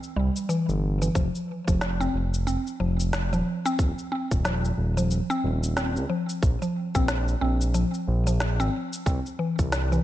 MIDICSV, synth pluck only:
0, 0, Header, 1, 2, 480
1, 0, Start_track
1, 0, Tempo, 659341
1, 839, Time_signature, 4, 2, 24, 8
1, 7305, End_track
2, 0, Start_track
2, 0, Title_t, "Synth pluck"
2, 0, Program_c, 0, 84
2, 119, Note_on_c, 0, 55, 75
2, 349, Note_off_c, 0, 55, 0
2, 357, Note_on_c, 0, 52, 78
2, 726, Note_off_c, 0, 52, 0
2, 740, Note_on_c, 0, 52, 74
2, 838, Note_off_c, 0, 52, 0
2, 838, Note_on_c, 0, 53, 86
2, 1206, Note_off_c, 0, 53, 0
2, 1219, Note_on_c, 0, 53, 71
2, 1446, Note_off_c, 0, 53, 0
2, 1459, Note_on_c, 0, 60, 91
2, 1553, Note_off_c, 0, 60, 0
2, 1797, Note_on_c, 0, 60, 83
2, 1933, Note_off_c, 0, 60, 0
2, 2039, Note_on_c, 0, 53, 73
2, 2407, Note_off_c, 0, 53, 0
2, 2423, Note_on_c, 0, 53, 73
2, 2648, Note_off_c, 0, 53, 0
2, 2661, Note_on_c, 0, 60, 102
2, 2754, Note_off_c, 0, 60, 0
2, 2998, Note_on_c, 0, 60, 74
2, 3134, Note_off_c, 0, 60, 0
2, 3237, Note_on_c, 0, 53, 76
2, 3606, Note_off_c, 0, 53, 0
2, 3619, Note_on_c, 0, 53, 76
2, 3846, Note_off_c, 0, 53, 0
2, 3858, Note_on_c, 0, 60, 101
2, 3952, Note_off_c, 0, 60, 0
2, 4198, Note_on_c, 0, 60, 83
2, 4334, Note_off_c, 0, 60, 0
2, 4437, Note_on_c, 0, 53, 78
2, 4678, Note_off_c, 0, 53, 0
2, 4819, Note_on_c, 0, 53, 72
2, 5046, Note_off_c, 0, 53, 0
2, 5059, Note_on_c, 0, 60, 100
2, 5152, Note_off_c, 0, 60, 0
2, 5397, Note_on_c, 0, 60, 79
2, 5533, Note_off_c, 0, 60, 0
2, 5637, Note_on_c, 0, 53, 80
2, 6006, Note_off_c, 0, 53, 0
2, 6019, Note_on_c, 0, 53, 77
2, 6246, Note_off_c, 0, 53, 0
2, 6259, Note_on_c, 0, 60, 105
2, 6353, Note_off_c, 0, 60, 0
2, 6596, Note_on_c, 0, 60, 81
2, 6733, Note_off_c, 0, 60, 0
2, 6836, Note_on_c, 0, 52, 74
2, 7206, Note_off_c, 0, 52, 0
2, 7222, Note_on_c, 0, 52, 70
2, 7305, Note_off_c, 0, 52, 0
2, 7305, End_track
0, 0, End_of_file